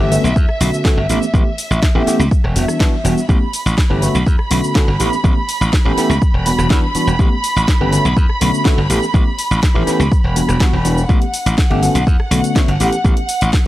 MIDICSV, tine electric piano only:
0, 0, Header, 1, 2, 480
1, 0, Start_track
1, 0, Tempo, 487805
1, 1318, Time_signature, 4, 2, 24, 8
1, 13453, End_track
2, 0, Start_track
2, 0, Title_t, "Tine electric piano"
2, 0, Program_c, 0, 4
2, 0, Note_on_c, 0, 59, 87
2, 1, Note_on_c, 0, 61, 87
2, 3, Note_on_c, 0, 67, 108
2, 99, Note_off_c, 0, 59, 0
2, 100, Note_off_c, 0, 61, 0
2, 101, Note_off_c, 0, 67, 0
2, 111, Note_on_c, 0, 50, 69
2, 115, Note_on_c, 0, 57, 63
2, 115, Note_on_c, 0, 59, 67
2, 115, Note_on_c, 0, 61, 64
2, 118, Note_on_c, 0, 66, 74
2, 256, Note_off_c, 0, 50, 0
2, 258, Note_off_c, 0, 57, 0
2, 258, Note_off_c, 0, 59, 0
2, 258, Note_off_c, 0, 61, 0
2, 260, Note_off_c, 0, 66, 0
2, 593, Note_on_c, 0, 50, 73
2, 596, Note_on_c, 0, 57, 65
2, 597, Note_on_c, 0, 59, 65
2, 600, Note_on_c, 0, 61, 64
2, 601, Note_on_c, 0, 66, 79
2, 807, Note_off_c, 0, 50, 0
2, 809, Note_off_c, 0, 57, 0
2, 809, Note_off_c, 0, 59, 0
2, 810, Note_off_c, 0, 61, 0
2, 811, Note_off_c, 0, 66, 0
2, 832, Note_on_c, 0, 50, 91
2, 834, Note_on_c, 0, 57, 82
2, 837, Note_on_c, 0, 59, 82
2, 840, Note_on_c, 0, 61, 81
2, 840, Note_on_c, 0, 66, 97
2, 976, Note_off_c, 0, 50, 0
2, 978, Note_off_c, 0, 57, 0
2, 979, Note_off_c, 0, 59, 0
2, 980, Note_off_c, 0, 66, 0
2, 981, Note_off_c, 0, 61, 0
2, 1075, Note_on_c, 0, 52, 81
2, 1078, Note_on_c, 0, 57, 73
2, 1078, Note_on_c, 0, 59, 74
2, 1080, Note_on_c, 0, 61, 69
2, 1082, Note_on_c, 0, 67, 83
2, 1218, Note_off_c, 0, 52, 0
2, 1219, Note_off_c, 0, 59, 0
2, 1220, Note_off_c, 0, 57, 0
2, 1220, Note_off_c, 0, 61, 0
2, 1221, Note_off_c, 0, 67, 0
2, 1317, Note_on_c, 0, 52, 77
2, 1317, Note_on_c, 0, 57, 70
2, 1319, Note_on_c, 0, 59, 71
2, 1322, Note_on_c, 0, 61, 68
2, 1325, Note_on_c, 0, 67, 86
2, 1459, Note_off_c, 0, 52, 0
2, 1459, Note_off_c, 0, 57, 0
2, 1460, Note_off_c, 0, 59, 0
2, 1461, Note_off_c, 0, 61, 0
2, 1463, Note_off_c, 0, 67, 0
2, 1915, Note_on_c, 0, 52, 98
2, 1917, Note_on_c, 0, 57, 91
2, 1919, Note_on_c, 0, 59, 83
2, 1920, Note_on_c, 0, 61, 90
2, 1924, Note_on_c, 0, 67, 105
2, 2017, Note_off_c, 0, 52, 0
2, 2018, Note_off_c, 0, 57, 0
2, 2019, Note_off_c, 0, 59, 0
2, 2020, Note_off_c, 0, 61, 0
2, 2022, Note_off_c, 0, 67, 0
2, 2033, Note_on_c, 0, 52, 70
2, 2036, Note_on_c, 0, 57, 65
2, 2038, Note_on_c, 0, 59, 68
2, 2040, Note_on_c, 0, 61, 62
2, 2043, Note_on_c, 0, 67, 79
2, 2177, Note_off_c, 0, 52, 0
2, 2178, Note_off_c, 0, 57, 0
2, 2180, Note_off_c, 0, 59, 0
2, 2180, Note_off_c, 0, 61, 0
2, 2182, Note_off_c, 0, 67, 0
2, 2513, Note_on_c, 0, 52, 72
2, 2518, Note_on_c, 0, 55, 64
2, 2519, Note_on_c, 0, 59, 64
2, 2520, Note_on_c, 0, 62, 65
2, 2521, Note_on_c, 0, 66, 77
2, 2727, Note_off_c, 0, 52, 0
2, 2729, Note_off_c, 0, 55, 0
2, 2730, Note_off_c, 0, 59, 0
2, 2730, Note_off_c, 0, 62, 0
2, 2731, Note_off_c, 0, 66, 0
2, 2748, Note_on_c, 0, 52, 90
2, 2751, Note_on_c, 0, 55, 78
2, 2754, Note_on_c, 0, 59, 77
2, 2755, Note_on_c, 0, 62, 82
2, 2756, Note_on_c, 0, 66, 92
2, 2894, Note_off_c, 0, 52, 0
2, 2896, Note_off_c, 0, 55, 0
2, 2897, Note_off_c, 0, 59, 0
2, 2898, Note_off_c, 0, 62, 0
2, 2899, Note_off_c, 0, 66, 0
2, 2988, Note_on_c, 0, 52, 78
2, 2991, Note_on_c, 0, 55, 72
2, 2993, Note_on_c, 0, 59, 73
2, 2994, Note_on_c, 0, 62, 72
2, 2996, Note_on_c, 0, 66, 88
2, 3134, Note_off_c, 0, 52, 0
2, 3136, Note_off_c, 0, 55, 0
2, 3137, Note_off_c, 0, 59, 0
2, 3137, Note_off_c, 0, 62, 0
2, 3138, Note_off_c, 0, 66, 0
2, 3233, Note_on_c, 0, 52, 79
2, 3234, Note_on_c, 0, 57, 71
2, 3234, Note_on_c, 0, 59, 71
2, 3236, Note_on_c, 0, 61, 73
2, 3239, Note_on_c, 0, 67, 85
2, 3377, Note_off_c, 0, 52, 0
2, 3377, Note_off_c, 0, 57, 0
2, 3378, Note_off_c, 0, 59, 0
2, 3379, Note_off_c, 0, 61, 0
2, 3380, Note_off_c, 0, 67, 0
2, 3832, Note_on_c, 0, 52, 95
2, 3835, Note_on_c, 0, 57, 86
2, 3837, Note_on_c, 0, 59, 88
2, 3840, Note_on_c, 0, 61, 85
2, 3841, Note_on_c, 0, 67, 103
2, 3936, Note_off_c, 0, 52, 0
2, 3937, Note_off_c, 0, 57, 0
2, 3938, Note_off_c, 0, 59, 0
2, 3940, Note_off_c, 0, 61, 0
2, 3940, Note_off_c, 0, 67, 0
2, 3952, Note_on_c, 0, 50, 68
2, 3955, Note_on_c, 0, 57, 64
2, 3956, Note_on_c, 0, 59, 68
2, 3959, Note_on_c, 0, 66, 80
2, 3960, Note_on_c, 0, 61, 67
2, 4097, Note_off_c, 0, 50, 0
2, 4098, Note_off_c, 0, 57, 0
2, 4098, Note_off_c, 0, 59, 0
2, 4100, Note_off_c, 0, 61, 0
2, 4100, Note_off_c, 0, 66, 0
2, 4431, Note_on_c, 0, 50, 71
2, 4434, Note_on_c, 0, 57, 70
2, 4437, Note_on_c, 0, 59, 66
2, 4438, Note_on_c, 0, 61, 66
2, 4440, Note_on_c, 0, 66, 78
2, 4646, Note_off_c, 0, 50, 0
2, 4648, Note_off_c, 0, 57, 0
2, 4649, Note_off_c, 0, 59, 0
2, 4650, Note_off_c, 0, 61, 0
2, 4650, Note_off_c, 0, 66, 0
2, 4670, Note_on_c, 0, 50, 87
2, 4671, Note_on_c, 0, 57, 78
2, 4674, Note_on_c, 0, 59, 78
2, 4675, Note_on_c, 0, 61, 84
2, 4679, Note_on_c, 0, 66, 94
2, 4815, Note_off_c, 0, 50, 0
2, 4816, Note_off_c, 0, 57, 0
2, 4817, Note_off_c, 0, 59, 0
2, 4818, Note_off_c, 0, 61, 0
2, 4820, Note_off_c, 0, 66, 0
2, 4911, Note_on_c, 0, 52, 79
2, 4913, Note_on_c, 0, 57, 73
2, 4915, Note_on_c, 0, 59, 73
2, 4916, Note_on_c, 0, 61, 72
2, 4921, Note_on_c, 0, 67, 89
2, 5056, Note_off_c, 0, 52, 0
2, 5057, Note_off_c, 0, 57, 0
2, 5058, Note_off_c, 0, 59, 0
2, 5059, Note_off_c, 0, 61, 0
2, 5061, Note_off_c, 0, 67, 0
2, 5151, Note_on_c, 0, 52, 78
2, 5152, Note_on_c, 0, 57, 70
2, 5154, Note_on_c, 0, 59, 67
2, 5157, Note_on_c, 0, 61, 71
2, 5158, Note_on_c, 0, 67, 83
2, 5296, Note_off_c, 0, 52, 0
2, 5296, Note_off_c, 0, 57, 0
2, 5298, Note_off_c, 0, 59, 0
2, 5299, Note_off_c, 0, 61, 0
2, 5299, Note_off_c, 0, 67, 0
2, 5756, Note_on_c, 0, 52, 101
2, 5760, Note_on_c, 0, 57, 88
2, 5761, Note_on_c, 0, 59, 85
2, 5763, Note_on_c, 0, 61, 91
2, 5765, Note_on_c, 0, 67, 103
2, 5857, Note_off_c, 0, 52, 0
2, 5860, Note_off_c, 0, 57, 0
2, 5860, Note_off_c, 0, 59, 0
2, 5861, Note_off_c, 0, 61, 0
2, 5862, Note_off_c, 0, 67, 0
2, 5876, Note_on_c, 0, 52, 75
2, 5878, Note_on_c, 0, 57, 67
2, 5882, Note_on_c, 0, 59, 65
2, 5883, Note_on_c, 0, 61, 67
2, 5886, Note_on_c, 0, 67, 76
2, 6018, Note_off_c, 0, 52, 0
2, 6020, Note_off_c, 0, 57, 0
2, 6021, Note_off_c, 0, 59, 0
2, 6022, Note_off_c, 0, 61, 0
2, 6023, Note_off_c, 0, 67, 0
2, 6353, Note_on_c, 0, 52, 71
2, 6356, Note_on_c, 0, 55, 65
2, 6357, Note_on_c, 0, 59, 68
2, 6359, Note_on_c, 0, 62, 68
2, 6362, Note_on_c, 0, 66, 78
2, 6567, Note_off_c, 0, 52, 0
2, 6568, Note_off_c, 0, 55, 0
2, 6569, Note_off_c, 0, 59, 0
2, 6570, Note_off_c, 0, 62, 0
2, 6571, Note_off_c, 0, 66, 0
2, 6599, Note_on_c, 0, 52, 91
2, 6601, Note_on_c, 0, 55, 82
2, 6603, Note_on_c, 0, 59, 80
2, 6604, Note_on_c, 0, 62, 82
2, 6607, Note_on_c, 0, 66, 94
2, 6740, Note_off_c, 0, 52, 0
2, 6741, Note_off_c, 0, 55, 0
2, 6742, Note_off_c, 0, 59, 0
2, 6743, Note_off_c, 0, 62, 0
2, 6744, Note_off_c, 0, 66, 0
2, 6837, Note_on_c, 0, 52, 85
2, 6838, Note_on_c, 0, 55, 72
2, 6840, Note_on_c, 0, 59, 71
2, 6845, Note_on_c, 0, 62, 72
2, 6846, Note_on_c, 0, 66, 86
2, 6979, Note_off_c, 0, 52, 0
2, 6979, Note_off_c, 0, 55, 0
2, 6981, Note_off_c, 0, 59, 0
2, 6983, Note_off_c, 0, 62, 0
2, 6983, Note_off_c, 0, 66, 0
2, 7075, Note_on_c, 0, 52, 76
2, 7080, Note_on_c, 0, 57, 71
2, 7082, Note_on_c, 0, 59, 72
2, 7083, Note_on_c, 0, 67, 87
2, 7085, Note_on_c, 0, 61, 73
2, 7218, Note_off_c, 0, 52, 0
2, 7220, Note_off_c, 0, 57, 0
2, 7222, Note_off_c, 0, 59, 0
2, 7222, Note_off_c, 0, 67, 0
2, 7223, Note_off_c, 0, 61, 0
2, 7676, Note_on_c, 0, 52, 95
2, 7680, Note_on_c, 0, 57, 88
2, 7682, Note_on_c, 0, 59, 88
2, 7683, Note_on_c, 0, 61, 90
2, 7686, Note_on_c, 0, 67, 104
2, 7778, Note_off_c, 0, 52, 0
2, 7780, Note_off_c, 0, 57, 0
2, 7780, Note_off_c, 0, 59, 0
2, 7781, Note_off_c, 0, 61, 0
2, 7782, Note_off_c, 0, 67, 0
2, 7795, Note_on_c, 0, 50, 70
2, 7795, Note_on_c, 0, 57, 68
2, 7798, Note_on_c, 0, 59, 66
2, 7800, Note_on_c, 0, 61, 67
2, 7801, Note_on_c, 0, 66, 76
2, 7938, Note_off_c, 0, 50, 0
2, 7938, Note_off_c, 0, 57, 0
2, 7939, Note_off_c, 0, 59, 0
2, 7940, Note_off_c, 0, 61, 0
2, 7941, Note_off_c, 0, 66, 0
2, 8274, Note_on_c, 0, 50, 71
2, 8276, Note_on_c, 0, 57, 67
2, 8278, Note_on_c, 0, 59, 68
2, 8281, Note_on_c, 0, 61, 68
2, 8283, Note_on_c, 0, 66, 82
2, 8487, Note_off_c, 0, 50, 0
2, 8488, Note_off_c, 0, 57, 0
2, 8489, Note_off_c, 0, 59, 0
2, 8491, Note_off_c, 0, 61, 0
2, 8492, Note_off_c, 0, 66, 0
2, 8511, Note_on_c, 0, 50, 87
2, 8514, Note_on_c, 0, 57, 83
2, 8515, Note_on_c, 0, 59, 82
2, 8519, Note_on_c, 0, 61, 85
2, 8520, Note_on_c, 0, 66, 99
2, 8656, Note_off_c, 0, 50, 0
2, 8658, Note_off_c, 0, 57, 0
2, 8658, Note_off_c, 0, 59, 0
2, 8660, Note_off_c, 0, 61, 0
2, 8660, Note_off_c, 0, 66, 0
2, 8750, Note_on_c, 0, 52, 77
2, 8753, Note_on_c, 0, 59, 74
2, 8754, Note_on_c, 0, 57, 78
2, 8756, Note_on_c, 0, 61, 74
2, 8758, Note_on_c, 0, 67, 88
2, 8895, Note_off_c, 0, 52, 0
2, 8897, Note_off_c, 0, 57, 0
2, 8897, Note_off_c, 0, 59, 0
2, 8898, Note_off_c, 0, 61, 0
2, 8899, Note_off_c, 0, 67, 0
2, 8987, Note_on_c, 0, 52, 75
2, 8990, Note_on_c, 0, 57, 66
2, 8992, Note_on_c, 0, 59, 68
2, 8993, Note_on_c, 0, 61, 67
2, 8995, Note_on_c, 0, 67, 88
2, 9134, Note_off_c, 0, 52, 0
2, 9135, Note_off_c, 0, 57, 0
2, 9136, Note_off_c, 0, 59, 0
2, 9137, Note_off_c, 0, 61, 0
2, 9138, Note_off_c, 0, 67, 0
2, 9587, Note_on_c, 0, 52, 101
2, 9591, Note_on_c, 0, 57, 88
2, 9592, Note_on_c, 0, 59, 88
2, 9595, Note_on_c, 0, 61, 93
2, 9596, Note_on_c, 0, 67, 100
2, 9693, Note_off_c, 0, 52, 0
2, 9695, Note_off_c, 0, 57, 0
2, 9696, Note_off_c, 0, 59, 0
2, 9697, Note_off_c, 0, 61, 0
2, 9698, Note_off_c, 0, 67, 0
2, 9709, Note_on_c, 0, 52, 74
2, 9710, Note_on_c, 0, 57, 64
2, 9711, Note_on_c, 0, 59, 68
2, 9713, Note_on_c, 0, 61, 69
2, 9717, Note_on_c, 0, 67, 80
2, 9855, Note_off_c, 0, 52, 0
2, 9856, Note_off_c, 0, 57, 0
2, 9856, Note_off_c, 0, 59, 0
2, 9857, Note_off_c, 0, 61, 0
2, 9859, Note_off_c, 0, 67, 0
2, 10188, Note_on_c, 0, 52, 75
2, 10191, Note_on_c, 0, 55, 67
2, 10191, Note_on_c, 0, 59, 63
2, 10194, Note_on_c, 0, 62, 68
2, 10197, Note_on_c, 0, 66, 80
2, 10404, Note_off_c, 0, 52, 0
2, 10406, Note_off_c, 0, 55, 0
2, 10406, Note_off_c, 0, 59, 0
2, 10407, Note_off_c, 0, 62, 0
2, 10409, Note_off_c, 0, 66, 0
2, 10431, Note_on_c, 0, 52, 87
2, 10433, Note_on_c, 0, 55, 85
2, 10434, Note_on_c, 0, 59, 78
2, 10436, Note_on_c, 0, 62, 82
2, 10439, Note_on_c, 0, 66, 98
2, 10576, Note_off_c, 0, 52, 0
2, 10577, Note_off_c, 0, 55, 0
2, 10577, Note_off_c, 0, 59, 0
2, 10579, Note_off_c, 0, 62, 0
2, 10580, Note_off_c, 0, 66, 0
2, 10668, Note_on_c, 0, 52, 83
2, 10671, Note_on_c, 0, 55, 75
2, 10673, Note_on_c, 0, 59, 72
2, 10674, Note_on_c, 0, 62, 73
2, 10677, Note_on_c, 0, 66, 89
2, 10814, Note_off_c, 0, 52, 0
2, 10816, Note_off_c, 0, 55, 0
2, 10817, Note_off_c, 0, 59, 0
2, 10817, Note_off_c, 0, 62, 0
2, 10819, Note_off_c, 0, 66, 0
2, 10907, Note_on_c, 0, 52, 74
2, 10909, Note_on_c, 0, 57, 69
2, 10911, Note_on_c, 0, 59, 69
2, 10914, Note_on_c, 0, 61, 69
2, 10916, Note_on_c, 0, 67, 84
2, 11054, Note_off_c, 0, 52, 0
2, 11055, Note_off_c, 0, 57, 0
2, 11056, Note_off_c, 0, 59, 0
2, 11057, Note_off_c, 0, 61, 0
2, 11058, Note_off_c, 0, 67, 0
2, 11514, Note_on_c, 0, 52, 91
2, 11517, Note_on_c, 0, 57, 90
2, 11519, Note_on_c, 0, 59, 84
2, 11520, Note_on_c, 0, 61, 88
2, 11522, Note_on_c, 0, 67, 111
2, 11617, Note_off_c, 0, 52, 0
2, 11618, Note_off_c, 0, 57, 0
2, 11619, Note_off_c, 0, 59, 0
2, 11620, Note_off_c, 0, 61, 0
2, 11620, Note_off_c, 0, 67, 0
2, 11635, Note_on_c, 0, 50, 70
2, 11635, Note_on_c, 0, 57, 63
2, 11636, Note_on_c, 0, 59, 67
2, 11641, Note_on_c, 0, 61, 66
2, 11643, Note_on_c, 0, 66, 81
2, 11778, Note_off_c, 0, 50, 0
2, 11778, Note_off_c, 0, 57, 0
2, 11778, Note_off_c, 0, 59, 0
2, 11781, Note_off_c, 0, 61, 0
2, 11782, Note_off_c, 0, 66, 0
2, 12109, Note_on_c, 0, 50, 74
2, 12112, Note_on_c, 0, 57, 66
2, 12114, Note_on_c, 0, 59, 65
2, 12116, Note_on_c, 0, 61, 65
2, 12118, Note_on_c, 0, 66, 79
2, 12325, Note_off_c, 0, 50, 0
2, 12327, Note_off_c, 0, 57, 0
2, 12328, Note_off_c, 0, 59, 0
2, 12329, Note_off_c, 0, 61, 0
2, 12330, Note_off_c, 0, 66, 0
2, 12355, Note_on_c, 0, 50, 90
2, 12358, Note_on_c, 0, 57, 82
2, 12358, Note_on_c, 0, 59, 84
2, 12363, Note_on_c, 0, 61, 83
2, 12365, Note_on_c, 0, 66, 92
2, 12498, Note_off_c, 0, 50, 0
2, 12499, Note_off_c, 0, 57, 0
2, 12500, Note_off_c, 0, 59, 0
2, 12502, Note_off_c, 0, 61, 0
2, 12503, Note_off_c, 0, 66, 0
2, 12592, Note_on_c, 0, 52, 79
2, 12596, Note_on_c, 0, 59, 72
2, 12597, Note_on_c, 0, 57, 71
2, 12598, Note_on_c, 0, 61, 73
2, 12600, Note_on_c, 0, 67, 91
2, 12736, Note_off_c, 0, 52, 0
2, 12739, Note_off_c, 0, 57, 0
2, 12739, Note_off_c, 0, 59, 0
2, 12739, Note_off_c, 0, 61, 0
2, 12740, Note_off_c, 0, 67, 0
2, 12836, Note_on_c, 0, 52, 74
2, 12837, Note_on_c, 0, 59, 69
2, 12838, Note_on_c, 0, 57, 69
2, 12839, Note_on_c, 0, 61, 72
2, 12843, Note_on_c, 0, 67, 83
2, 12978, Note_off_c, 0, 52, 0
2, 12979, Note_off_c, 0, 57, 0
2, 12979, Note_off_c, 0, 59, 0
2, 12980, Note_off_c, 0, 61, 0
2, 12982, Note_off_c, 0, 67, 0
2, 13453, End_track
0, 0, End_of_file